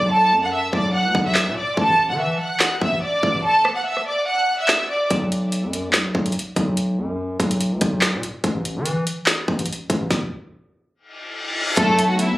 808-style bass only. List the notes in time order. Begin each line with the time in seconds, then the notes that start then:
Already playing: B1
0.31 F#2
0.73 B1
1.05 D2
1.15 B1
1.47 B2
1.77 A1
2.09 E3
2.81 A1
3.23 A1
5.11 B1
5.63 F#2
5.89 B1
6.15 B1
6.56 B1
6.98 F#2
7.40 B1
7.72 D2
7.81 B1
8.13 B2
8.44 A1
8.76 E3
9.48 A1
9.90 A1
11.77 B1
12.30 F#2